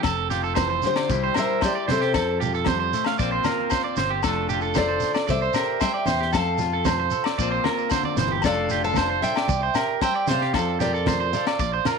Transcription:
Already playing: C4
0.03 F1 F3 A4, kick, snare, low agogo, shekere
0.30 F4 G4, snare, muted conga, shekere
0.44 A4, shekere
0.55 E3 C5, kick, snare, high conga, low agogo, shekere
0.70 C5
0.82 D3 G4, snare, shekere
0.87 C5
0.96 D5, snare, low agogo, shekere
1.09 C2 C3 G3 E4 G4, muted clean electric guitar stroke, kick, snare, muted conga, high conga, shekere
1.24 C5
1.34 G4 A#4 C5, snare, low agogo, shekere
1.38 E5
1.61 G3 G4 C5 D5, kick, snare, muted conga, low agogo, shekere
1.75 D5
1.88 C3 E4 A4 C5, snare, high conga, shekere
1.93 C5
2.00 G4, snare
2.13 F2 F3 A4, kick, snare, low agogo, shekere
2.40 F4 G4, muted conga, low conga, shekere
2.54 A4, shekere
2.65 G3 C5, kick, snare, high conga, low conga, low agogo, shekere
2.80 C5
2.93 A3, snare, shekere
3.04 F5, snare, low agogo, shekere
3.19 A#1 A#2 A#3 C4 F4 C5 D5, kick, snare, shekere
3.32 C5
3.44 F4 A#4, snare, high conga, low agogo, shekere
3.70 A#3 C5, kick, snare, muted conga, high conga, low agogo, shekere
3.84 D5
3.97 G1 C5, snare, shekere
4.10 G4
4.23 F1 F3 A3 A4, kick, snare, low agogo, shekere
4.27 D4 F4 A4
4.49 G4, muted conga, shekere
4.53 F4
4.61 A4, shekere
4.74 A4 C5 D5, kick, snare, high conga, low agogo, shekere
4.79 A3
4.89 C5
5.00 snare, shekere
5.14 D5, snare, low agogo, shekere
5.27 C2 C3 C5 D5 E5, kick, snare, muted conga, high conga, shekere
5.42 C5
5.54 G4 A#4, snare, low agogo, shekere
5.80 G3 C5 E5 G5, kick, snare, muted conga, low agogo, shekere
5.94 D5
6.06 E2 C5, snare, high conga, shekere
6.20 G4, snare
6.33 F2 F3 A4 F5 A5, kick, snare, low agogo, shekere
6.58 F4, snare, muted conga, low conga, shekere
6.73 A4
6.85 A3 C5, kick, snare, high conga, low conga, low agogo, shekere
7.00 C5
7.11 A4, shekere
7.24 D5, snare, low agogo, shekere
7.38 A#1 A#2 A#3 C4 F4 C5 D5, kick, muted conga, shekere
7.52 C5
7.64 F4 A#4, snare, high conga, low agogo
7.78 shekere
7.90 D3 C5, kick, snare, high conga, low agogo, shekere
8.03 D5, high conga
8.17 G1 E3 C5, snare, low conga, shekere
8.28 G4, low conga
8.41 F1 F3 A3 F4 A4, kick, snare, muted conga, low agogo, shekere
8.45 D4 A4 D5 F5
8.67 F4, muted conga, shekere
8.71 G4, snare
8.84 A4 F5 A5, shekere
8.94 A3 C5, kick, snare, high conga, low agogo, shekere
9.10 C5
9.22 A4 E5 G5, snare, shekere
9.36 D5, snare, low agogo
9.48 C2 C3 D5, kick, muted conga, high conga, shekere
9.63 C5
9.74 G4 A#4, snare, low agogo, shekere
10.01 G3 C5 E5 G5, kick, snare, muted conga, low agogo, shekere
10.16 D5
10.27 C3 C5 D5 F5, snare, high conga, shekere
10.42 G4, snare
10.54 F2 F3 A4, kick, snare, low agogo, shekere
10.80 F4 G4 A#4 D5, snare, muted conga, low conga, shekere
10.94 A4, shekere
11.06 A3 C5, kick, snare, high conga, low conga, low agogo, shekere
11.20 C5
11.33 A4 D5 F5, snare, shekere
11.47 D5, snare, low agogo, shekere
11.59 A#1 A#2 D5, kick, snare, muted conga, shekere
11.74 C5
11.85 F4 A#4, snare, high conga, low agogo, shekere

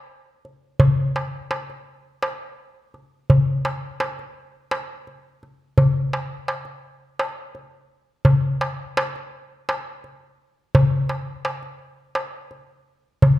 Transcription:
0.45 darbuka ka
0.80 darbuka dum
1.16 darbuka tek
1.51 darbuka tek
1.70 darbuka ka
2.22 darbuka tek
2.94 darbuka ka
3.30 darbuka dum
3.65 darbuka tek
4.00 darbuka tek
4.19 darbuka ka
4.71 darbuka tek
5.07 darbuka ka
5.43 darbuka ka
5.78 darbuka dum
6.13 darbuka tek
6.48 darbuka tek
6.65 darbuka ka
7.19 darbuka tek
7.55 darbuka ka
8.25 darbuka dum
8.61 darbuka tek
8.97 darbuka tek
9.16 darbuka ka
9.69 darbuka tek
10.04 darbuka ka
10.75 darbuka dum
11.09 darbuka tek
11.45 darbuka tek
11.63 darbuka ka
12.15 darbuka tek
12.51 darbuka ka
13.22 darbuka dum

